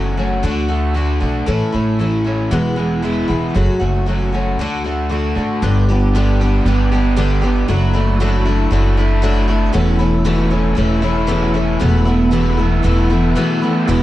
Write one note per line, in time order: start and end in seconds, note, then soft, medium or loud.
0.00 0.40 F#1 medium
0.00 0.44 F#2 medium
0.00 0.17 F#3 medium
0.00 0.17 A3 medium
0.00 0.44 A3 soft
0.00 0.16 C#4 medium
0.00 0.16 F#4 medium
0.17 0.42 F#3 soft
0.17 0.42 A3 soft
0.17 0.43 C#4 soft
0.17 0.43 F#4 soft
0.43 1.17 D2 medium
0.43 0.69 D3 medium
0.43 0.69 A3 medium
0.43 0.68 D4 medium
0.43 0.67 F#4 medium
0.68 0.94 A3 soft
0.68 0.95 D4 soft
0.68 0.95 F#4 soft
0.94 1.21 D3 soft
0.94 1.21 A3 medium
0.94 1.21 D4 medium
0.94 1.19 F#4 medium
1.20 1.45 B1 medium
1.20 1.46 A3 soft
1.20 1.47 D4 soft
1.20 1.47 F#4 soft
1.46 1.59 A1 medium
1.46 1.73 A2 medium
1.46 1.73 E3 medium
1.46 1.73 A3 medium
1.46 1.73 C#4 medium
1.46 1.71 E4 medium
1.72 2.47 A1 medium
1.72 1.99 A3 soft
1.72 1.99 C#4 soft
1.72 1.99 E4 soft
1.99 2.25 E3 soft
1.99 2.25 A3 soft
1.99 2.26 C#4 medium
1.99 2.23 E4 medium
2.24 2.52 A3 soft
2.24 2.52 C#4 soft
2.24 2.51 E4 soft
2.51 3.25 E1 medium
2.51 2.77 E2 medium
2.51 2.77 B2 medium
2.51 2.77 E3 medium
2.51 2.77 G#3 medium
2.51 2.76 B3 medium
2.51 2.75 E4 medium
2.76 3.01 E3 soft
2.76 3.02 G#3 soft
2.76 3.03 B3 soft
2.76 3.02 E4 soft
3.02 3.28 E3 medium
3.02 3.29 G#3 medium
3.02 3.28 B3 medium
3.02 3.26 E4 medium
3.28 3.53 E1 medium
3.28 3.55 E3 soft
3.28 3.55 G#3 soft
3.28 3.55 B3 soft
3.28 3.54 E4 medium
3.55 3.67 F#1 medium
3.55 3.80 F#2 medium
3.55 3.81 C#3 medium
3.55 3.81 F#3 medium
3.55 3.80 A3 medium
3.55 3.79 C#4 medium
3.55 3.78 F#4 medium
3.79 4.55 F#1 medium
3.79 4.05 F#3 soft
3.79 4.06 A3 soft
3.79 4.06 C#4 soft
3.79 4.06 F#4 soft
4.06 4.32 F#3 soft
4.06 4.33 A3 medium
4.06 4.33 C#4 medium
4.06 4.31 F#4 medium
4.32 4.59 F#3 soft
4.32 4.59 A3 soft
4.32 4.59 C#4 soft
4.32 4.58 F#4 soft
4.58 5.32 D2 medium
4.58 4.85 D3 medium
4.58 4.85 A3 medium
4.58 4.85 D4 medium
4.58 4.83 F#4 medium
4.84 5.09 A3 soft
4.84 5.10 D4 soft
4.84 5.10 F#4 soft
5.09 5.36 D3 medium
5.09 5.36 A3 soft
5.09 5.36 D4 medium
5.09 5.34 F#4 medium
5.35 5.60 G#1 medium
5.35 5.63 A3 soft
5.35 5.62 D4 soft
5.35 5.62 F#4 soft
5.62 6.62 G1 medium
5.62 5.88 G2 medium
5.62 5.88 D3 medium
5.62 5.88 G3 medium
5.62 5.88 B3 medium
5.62 7.68 B3 medium
5.62 5.89 D4 medium
5.62 7.67 D4 medium
5.62 7.68 G4 medium
5.62 5.87 G4 medium
5.89 7.18 D3 medium
5.89 6.14 G3 soft
5.89 6.15 B3 soft
5.89 6.15 D4 soft
5.89 6.14 G4 soft
6.15 6.40 G2 medium
6.15 6.40 D3 medium
6.15 6.40 G3 medium
6.15 6.41 B3 medium
6.15 6.41 D4 medium
6.15 6.40 G4 medium
6.41 6.65 G3 soft
6.41 6.66 B3 soft
6.41 6.66 D4 soft
6.41 6.66 G4 medium
6.66 7.65 G1 medium
6.66 6.92 G3 medium
6.66 6.92 B3 medium
6.66 6.92 D4 medium
6.66 6.90 G4 medium
6.92 7.16 G3 soft
6.92 7.17 B3 soft
6.92 7.17 D4 medium
6.92 7.17 G4 soft
7.16 7.43 G2 medium
7.16 7.43 D3 medium
7.16 7.43 G3 medium
7.16 7.42 B3 medium
7.16 7.42 D4 medium
7.16 7.40 G4 medium
7.42 7.68 G3 soft
7.42 7.68 B3 soft
7.42 7.68 D4 medium
7.42 7.68 G4 medium
7.68 8.68 F#1 medium
7.68 7.94 F#3 medium
7.68 7.95 A3 medium
7.68 9.73 D4 medium
7.68 7.93 D4 medium
7.68 9.73 E4 medium
7.68 7.92 E4 medium
7.68 9.73 F#4 medium
7.93 8.19 A3 soft
7.93 8.20 D4 medium
7.93 8.20 E4 medium
8.20 8.46 F#3 medium
8.20 8.46 A3 medium
8.20 8.46 D4 medium
8.20 8.44 E4 medium
8.45 8.71 A3 soft
8.45 8.72 D4 soft
8.45 8.72 E4 medium
8.71 9.71 F#1 medium
8.71 8.97 F#3 medium
8.71 8.98 A3 medium
8.71 8.97 D4 medium
8.71 8.96 E4 medium
8.97 9.22 A3 soft
8.97 9.23 D4 soft
8.97 9.23 E4 soft
9.22 9.49 F#3 medium
9.22 9.49 A3 medium
9.22 9.47 D4 medium
9.22 9.46 E4 medium
9.48 9.73 A3 soft
9.48 9.74 D4 soft
9.48 9.73 E4 soft
9.73 10.75 E1 medium
9.73 10.00 E2 medium
9.73 10.00 B2 medium
9.73 10.00 E3 medium
9.73 10.00 A3 medium
9.73 11.79 B3 medium
9.73 11.79 C#4 medium
9.73 9.99 C#4 medium
9.73 9.98 E4 medium
9.73 11.79 A4 medium
9.99 11.30 B2 medium
9.99 10.24 E3 soft
9.99 10.25 A3 soft
9.99 10.25 C#4 medium
9.99 10.25 E4 medium
10.25 10.52 E2 medium
10.25 10.52 B2 medium
10.25 10.52 E3 medium
10.25 10.51 A3 medium
10.25 10.50 C#4 medium
10.25 10.49 E4 medium
10.50 10.74 E3 soft
10.50 10.75 A3 soft
10.50 10.76 C#4 soft
10.50 10.76 E4 medium
10.75 11.78 E1 medium
10.75 11.03 E3 medium
10.75 11.03 A3 medium
10.75 11.02 C#4 medium
10.75 11.01 E4 medium
11.02 11.27 E3 soft
11.02 11.27 A3 soft
11.02 11.28 C#4 medium
11.02 11.28 E4 medium
11.27 11.55 E2 medium
11.27 11.55 B2 medium
11.27 11.55 E3 medium
11.27 11.54 A3 medium
11.27 11.53 C#4 medium
11.27 11.53 E4 medium
11.54 11.79 E3 soft
11.54 11.80 A3 soft
11.54 11.81 C#4 medium
11.54 11.80 E4 soft
11.79 12.81 E1 loud
11.79 12.07 E2 medium
11.79 12.07 B2 medium
11.79 12.07 E3 medium
11.79 12.06 A3 medium
11.79 12.05 B3 medium
11.79 13.60 B3 medium
11.79 13.68 E4 medium
11.79 12.04 E4 medium
11.79 13.76 A4 medium
12.05 12.31 E3 soft
12.05 12.31 A3 soft
12.05 12.32 B3 medium
12.05 12.32 E4 soft
12.09 13.38 B2 medium
12.31 12.58 E2 medium
12.31 12.59 B2 medium
12.31 12.59 E3 medium
12.31 12.58 A3 medium
12.31 12.58 B3 medium
12.31 12.56 E4 medium
12.57 12.82 E3 soft
12.57 12.83 A3 soft
12.57 12.83 B3 soft
12.57 12.84 E4 medium
12.83 13.33 E1 loud
12.83 13.10 E3 medium
12.83 13.10 A3 medium
12.83 13.09 B3 medium
12.83 13.09 E4 medium
13.10 13.35 E3 soft
13.10 13.36 A3 soft
13.10 13.36 B3 soft
13.10 13.36 E4 soft
13.35 13.62 E2 medium
13.35 13.62 B2 medium
13.35 13.63 E3 medium
13.35 13.62 A3 medium
13.35 13.62 B3 medium
13.35 13.60 E4 medium
13.58 13.80 A3 medium
13.58 13.81 B3 medium
13.58 13.88 E4 soft
13.63 13.87 E3 soft
13.63 13.88 A3 soft
13.63 13.88 B3 soft
13.63 13.82 C4 medium
13.67 13.84 D4 medium
13.67 13.85 E4 medium
13.73 13.87 F4 medium
13.73 13.88 G4 medium
13.77 13.89 A4 medium
13.77 13.91 B4 medium
13.83 13.92 C5 medium
13.83 13.94 D5 medium
13.87 14.03 E1 medium
13.87 14.03 E2 medium
13.87 14.03 B2 medium
13.87 14.03 E3 medium
13.87 14.03 G#3 medium
13.87 14.03 B3 medium
13.87 14.03 E4 medium
13.87 14.03 G#4 medium